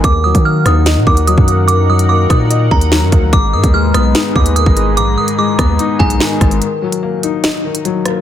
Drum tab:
HH |x--x--x-x--xx-x-|x--x--x-x--x--x-|x--x--x-x--xx-x-|x--x--x-x--x--xx|
SD |------r-o-------|------r-----o---|------r-o-------|------r-----o-r-|
BD |o--o------o--o--|------o---o---o-|o--o------o--o--|------o---o---o-|

HH |x--x--x-x--xx-x-|
SD |--------o-----r-|
BD |----------------|